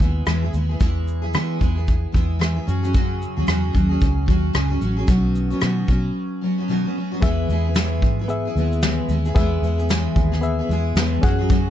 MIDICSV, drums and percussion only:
0, 0, Header, 1, 2, 480
1, 0, Start_track
1, 0, Key_signature, 4, "major"
1, 0, Tempo, 534759
1, 723, Time_signature, 4, 2, 24, 8
1, 10502, End_track
2, 0, Start_track
2, 0, Title_t, "Drums"
2, 1, Note_on_c, 9, 36, 74
2, 10, Note_on_c, 9, 82, 41
2, 91, Note_off_c, 9, 36, 0
2, 100, Note_off_c, 9, 82, 0
2, 234, Note_on_c, 9, 82, 59
2, 240, Note_on_c, 9, 37, 106
2, 324, Note_off_c, 9, 82, 0
2, 330, Note_off_c, 9, 37, 0
2, 481, Note_on_c, 9, 82, 57
2, 571, Note_off_c, 9, 82, 0
2, 721, Note_on_c, 9, 82, 68
2, 724, Note_on_c, 9, 36, 101
2, 811, Note_off_c, 9, 82, 0
2, 814, Note_off_c, 9, 36, 0
2, 966, Note_on_c, 9, 82, 51
2, 1056, Note_off_c, 9, 82, 0
2, 1200, Note_on_c, 9, 82, 75
2, 1209, Note_on_c, 9, 37, 113
2, 1290, Note_off_c, 9, 82, 0
2, 1299, Note_off_c, 9, 37, 0
2, 1446, Note_on_c, 9, 36, 72
2, 1453, Note_on_c, 9, 82, 46
2, 1536, Note_off_c, 9, 36, 0
2, 1543, Note_off_c, 9, 82, 0
2, 1684, Note_on_c, 9, 82, 59
2, 1689, Note_on_c, 9, 36, 80
2, 1774, Note_off_c, 9, 82, 0
2, 1779, Note_off_c, 9, 36, 0
2, 1925, Note_on_c, 9, 36, 80
2, 1936, Note_on_c, 9, 82, 45
2, 2015, Note_off_c, 9, 36, 0
2, 2025, Note_off_c, 9, 82, 0
2, 2161, Note_on_c, 9, 82, 58
2, 2167, Note_on_c, 9, 37, 97
2, 2251, Note_off_c, 9, 82, 0
2, 2257, Note_off_c, 9, 37, 0
2, 2407, Note_on_c, 9, 82, 55
2, 2496, Note_off_c, 9, 82, 0
2, 2552, Note_on_c, 9, 82, 60
2, 2642, Note_off_c, 9, 82, 0
2, 2642, Note_on_c, 9, 82, 73
2, 2644, Note_on_c, 9, 36, 99
2, 2731, Note_off_c, 9, 82, 0
2, 2733, Note_off_c, 9, 36, 0
2, 2890, Note_on_c, 9, 82, 54
2, 2980, Note_off_c, 9, 82, 0
2, 3116, Note_on_c, 9, 82, 70
2, 3125, Note_on_c, 9, 37, 118
2, 3206, Note_off_c, 9, 82, 0
2, 3215, Note_off_c, 9, 37, 0
2, 3363, Note_on_c, 9, 36, 75
2, 3369, Note_on_c, 9, 82, 46
2, 3453, Note_off_c, 9, 36, 0
2, 3459, Note_off_c, 9, 82, 0
2, 3598, Note_on_c, 9, 82, 54
2, 3605, Note_on_c, 9, 36, 91
2, 3688, Note_off_c, 9, 82, 0
2, 3695, Note_off_c, 9, 36, 0
2, 3842, Note_on_c, 9, 36, 83
2, 3856, Note_on_c, 9, 82, 45
2, 3932, Note_off_c, 9, 36, 0
2, 3946, Note_off_c, 9, 82, 0
2, 4077, Note_on_c, 9, 82, 62
2, 4083, Note_on_c, 9, 37, 109
2, 4167, Note_off_c, 9, 82, 0
2, 4173, Note_off_c, 9, 37, 0
2, 4320, Note_on_c, 9, 82, 54
2, 4410, Note_off_c, 9, 82, 0
2, 4557, Note_on_c, 9, 82, 79
2, 4560, Note_on_c, 9, 36, 106
2, 4647, Note_off_c, 9, 82, 0
2, 4650, Note_off_c, 9, 36, 0
2, 4804, Note_on_c, 9, 82, 54
2, 4894, Note_off_c, 9, 82, 0
2, 4945, Note_on_c, 9, 82, 44
2, 5031, Note_off_c, 9, 82, 0
2, 5031, Note_on_c, 9, 82, 70
2, 5041, Note_on_c, 9, 37, 114
2, 5121, Note_off_c, 9, 82, 0
2, 5130, Note_off_c, 9, 37, 0
2, 5281, Note_on_c, 9, 36, 82
2, 5284, Note_on_c, 9, 82, 46
2, 5371, Note_off_c, 9, 36, 0
2, 5374, Note_off_c, 9, 82, 0
2, 6482, Note_on_c, 9, 82, 72
2, 6484, Note_on_c, 9, 36, 120
2, 6572, Note_off_c, 9, 82, 0
2, 6574, Note_off_c, 9, 36, 0
2, 6730, Note_on_c, 9, 82, 53
2, 6820, Note_off_c, 9, 82, 0
2, 6953, Note_on_c, 9, 82, 81
2, 6962, Note_on_c, 9, 38, 126
2, 7043, Note_off_c, 9, 82, 0
2, 7052, Note_off_c, 9, 38, 0
2, 7202, Note_on_c, 9, 36, 85
2, 7208, Note_on_c, 9, 82, 44
2, 7291, Note_off_c, 9, 36, 0
2, 7297, Note_off_c, 9, 82, 0
2, 7439, Note_on_c, 9, 82, 61
2, 7529, Note_off_c, 9, 82, 0
2, 7693, Note_on_c, 9, 82, 41
2, 7783, Note_off_c, 9, 82, 0
2, 7830, Note_on_c, 9, 82, 43
2, 7916, Note_off_c, 9, 82, 0
2, 7916, Note_on_c, 9, 82, 64
2, 7922, Note_on_c, 9, 38, 104
2, 8006, Note_off_c, 9, 82, 0
2, 8012, Note_off_c, 9, 38, 0
2, 8159, Note_on_c, 9, 82, 63
2, 8249, Note_off_c, 9, 82, 0
2, 8305, Note_on_c, 9, 82, 63
2, 8395, Note_off_c, 9, 82, 0
2, 8399, Note_on_c, 9, 36, 123
2, 8399, Note_on_c, 9, 82, 75
2, 8488, Note_off_c, 9, 82, 0
2, 8489, Note_off_c, 9, 36, 0
2, 8652, Note_on_c, 9, 82, 53
2, 8742, Note_off_c, 9, 82, 0
2, 8789, Note_on_c, 9, 82, 50
2, 8879, Note_off_c, 9, 82, 0
2, 8880, Note_on_c, 9, 82, 79
2, 8890, Note_on_c, 9, 38, 123
2, 8970, Note_off_c, 9, 82, 0
2, 8979, Note_off_c, 9, 38, 0
2, 9119, Note_on_c, 9, 36, 85
2, 9123, Note_on_c, 9, 82, 49
2, 9209, Note_off_c, 9, 36, 0
2, 9213, Note_off_c, 9, 82, 0
2, 9273, Note_on_c, 9, 38, 33
2, 9358, Note_on_c, 9, 82, 59
2, 9363, Note_off_c, 9, 38, 0
2, 9447, Note_off_c, 9, 82, 0
2, 9614, Note_on_c, 9, 82, 46
2, 9703, Note_off_c, 9, 82, 0
2, 9838, Note_on_c, 9, 82, 68
2, 9844, Note_on_c, 9, 38, 109
2, 9927, Note_off_c, 9, 82, 0
2, 9933, Note_off_c, 9, 38, 0
2, 10081, Note_on_c, 9, 36, 109
2, 10081, Note_on_c, 9, 82, 57
2, 10171, Note_off_c, 9, 36, 0
2, 10171, Note_off_c, 9, 82, 0
2, 10319, Note_on_c, 9, 82, 79
2, 10322, Note_on_c, 9, 36, 109
2, 10409, Note_off_c, 9, 82, 0
2, 10412, Note_off_c, 9, 36, 0
2, 10502, End_track
0, 0, End_of_file